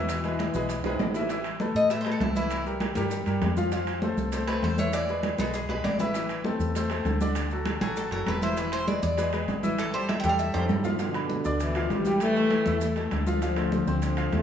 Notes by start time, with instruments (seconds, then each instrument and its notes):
Already playing: fingered electric bass E2, trombone section B2 E3, grand piano E3 E4 E5
0.09 high bongo, high conga, high timbale, claves, maracas
0.24 grand piano G#3 G#4 B4, high bongo, high conga, high timbale, maracas
0.39 high bongo, high conga, high timbale, claves, maracas
0.54 fingered electric bass B1, grand piano G#3 G#4 B4, high conga, maracas
0.69 high bongo, high conga, high timbale, maracas
0.84 fingered electric bass B1, grand piano G#3 G#4 B4, high bongo, high conga, high timbale, maracas
0.99 fingered electric bass A1, high bongo, low bongo, high conga, low timbale, claves, maracas
1.14 grand piano E3 E4 E5, high bongo, high conga, low timbale, maracas
1.29 grand piano E3 E4 E5, high bongo, high conga, high timbale, maracas
1.44 high conga, high timbale, claves, maracas
1.60 grand piano A3 A4 B4, high bongo, high conga, maracas
1.75 fingered electric bass A2, cuban tres D#5, high bongo, high conga, maracas
1.90 grand piano A3 A4 B4, cuban tres E5, high bongo, high conga, high timbale, maracas
2.01 cuban tres C5, high timbale
2.05 grand piano A3 A4 B4, high bongo, high conga, claves, maracas
2.11 cuban tres A4
2.20 fingered electric bass C2, cuban tres E4, high bongo, low bongo, high conga, high timbale, low timbale, maracas
2.35 grand piano E3 E4 E5, cuban tres E4, high bongo, high conga, maracas
2.50 high bongo, high conga, high timbale, claves, maracas
2.65 grand piano G3 G4 A#4, high conga, maracas
2.80 high bongo, high conga, high timbale, claves, maracas
2.95 fingered electric bass G2, grand piano G3 G4 A#4, high bongo, high conga, high timbale, maracas
3.11 high bongo, high conga, maracas
3.26 fingered electric bass G2, grand piano G3 G4 A#4, high bongo, high conga, high timbale, maracas
3.41 fingered electric bass F2, high bongo, low bongo, high conga, high timbale, low timbale, claves, maracas
3.57 grand piano F3 F4 F5, high bongo, high conga, maracas
3.72 grand piano F3 F4 F5, high bongo, high conga, high timbale, maracas
3.87 high conga, high timbale, claves, maracas
4.02 grand piano A3 A4 C5, high bongo, high conga, maracas
4.17 fingered electric bass C2, high bongo, high conga, maracas
4.32 grand piano A3 A4 C5, high bongo, high conga, high timbale, maracas
4.47 grand piano A3 A4 C5, cuban tres B4, high bongo, high conga, high timbale, claves, maracas
4.62 fingered electric bass E2, cuban tres C5, high bongo, low bongo, high conga, high timbale, maracas
4.78 grand piano E3 E4 E5, cuban tres C#5, high bongo, high conga, maracas
4.93 cuban tres D5, high bongo, high conga, high timbale, claves, maracas
5.08 grand piano G#3 G#4 B4, high conga, maracas
5.23 high bongo, high conga, high timbale, claves, maracas
5.38 fingered electric bass B1, grand piano G#3 G#4 B4, cuban tres A4, high conga, high timbale, maracas
5.54 cuban tres G#4, high bongo, high conga, maracas
5.69 fingered electric bass B1, grand piano G#3 G#4 B4, cuban tres B4, high bongo, high conga, high timbale, maracas
5.84 fingered electric bass A1, cuban tres D5, low bongo, high conga, high timbale, claves, maracas
5.99 grand piano E3 E4 E5, cuban tres B4, low bongo, high conga, maracas
6.14 grand piano E3 E4 E5, high bongo, high conga, high timbale, maracas
6.29 high conga, high timbale, claves, maracas
6.44 grand piano A3 C4 A4, high bongo, high conga, maracas
6.59 fingered electric bass E2, high bongo, high conga, maracas
6.75 grand piano A3 A4 C5, high bongo, high conga, high timbale, maracas
6.90 grand piano A3 A4 C5, high bongo, high conga, high timbale, claves, maracas
7.05 fingered electric bass D2, high bongo, low bongo, high conga, high timbale, maracas
7.21 grand piano D3 D4 D5, high bongo, high conga, maracas
7.35 high bongo, high conga, high timbale, claves, maracas
7.51 grand piano F#3 F#4 A4, high conga, maracas
7.65 high bongo, high conga, high timbale, claves, maracas
7.81 fingered electric bass A1, grand piano F#3 F#4 A4, cuban tres G#4, high bongo, high conga, high timbale, maracas
7.96 cuban tres A4, high bongo, high conga, maracas
8.11 fingered electric bass F#1, grand piano F#3 F#4 A4, cuban tres A#4, high bongo, high conga, high timbale, maracas
8.26 fingered electric bass E1, cuban tres B4, high bongo, low bongo, high conga, high timbale, claves, maracas
8.41 grand piano E3 E4 E5, cuban tres C5, high bongo, high conga, maracas
8.57 grand piano E3 E4 E5, cuban tres B4, high bongo, high conga, high timbale, maracas
8.72 cuban tres C5, high conga, high timbale, claves, maracas
8.87 grand piano G#3 G#4 B4, cuban tres D5, high bongo, high conga, maracas
9.03 fingered electric bass E2, cuban tres D5, high bongo, high conga, maracas
9.18 grand piano G#3 G#4 B4, high bongo, high conga, high timbale, maracas
9.33 grand piano G#3 G#4 B4, high bongo, high conga, high timbale, claves, maracas
9.48 fingered electric bass A1, high bongo, low bongo, high conga, high timbale, maracas
9.63 grand piano E3 E4 E5, high bongo, high conga, maracas
9.79 cuban tres A4, high bongo, high conga, high timbale, claves, maracas
9.94 grand piano G3 G4 A4, cuban tres C5, high conga, maracas
10.09 cuban tres E5, high bongo, high conga, high timbale, claves, maracas
10.20 fingered electric bass E2, grand piano G3, cuban tres G5, high timbale
10.24 grand piano G4 A4, high bongo, high conga, maracas
10.29 cuban tres F5
10.39 cuban tres E5, high bongo, high conga, maracas
10.54 fingered electric bass F2, grand piano G3 G4 A4, cuban tres C5, high bongo, high conga, high timbale, maracas
10.69 fingered electric bass G2, high bongo, low bongo, high conga, high timbale, claves, maracas
10.84 grand piano F3 F4 F5, high bongo, high conga, low timbale, maracas
10.99 trombone section B2 D3, grand piano F3 F4 F5, high bongo, high conga, high timbale, maracas
11.14 grand piano B3 B4 B5, high conga, high timbale, claves, maracas
11.30 high bongo, high conga, maracas
11.45 fingered electric bass D2, grand piano D4 D5 D6, high bongo, high conga, maracas
11.60 trombone section B2 E3, high bongo, high conga, high timbale, maracas
11.75 grand piano F3 F4 F5, high bongo, high conga, high timbale, claves, maracas
11.90 fingered electric bass A1, trombone section E3 G3, high bongo, low bongo, high conga, high timbale, maracas
12.05 grand piano G3 G4 G5, high conga, maracas
12.20 trombone section E3 A3, high bongo, high conga, high timbale, claves, maracas
12.36 grand piano A3 A4 A5, high conga, maracas
12.50 high bongo, high conga, high timbale, claves, maracas
12.66 fingered electric bass E2, grand piano E4 E5 E6, high conga, high timbale, maracas
12.81 trombone section E3 A3, high bongo, high conga, maracas
12.96 grand piano A3 A4 A5, high bongo, high conga, high timbale, maracas
13.11 fingered electric bass D2, high bongo, low bongo, high conga, high timbale, claves, maracas
13.27 grand piano F3 F4 F5, high bongo, high conga, maracas
13.42 trombone section D3 F3, grand piano F3 F4 F5, high bongo, high timbale, maracas
13.56 grand piano A3 A4 A5, high conga, high timbale, claves, maracas
13.72 high bongo, high conga, maracas
13.87 fingered electric bass D2, grand piano C4 C5 C6, high bongo, high conga, maracas
14.02 trombone section D3 F3, high bongo, high conga, high timbale, maracas
14.17 grand piano F3 F4 F5, high bongo, high conga, high timbale, claves, maracas
14.32 fingered electric bass E2, trombone section A3 F4, high bongo, low bongo, high conga, high timbale, maracas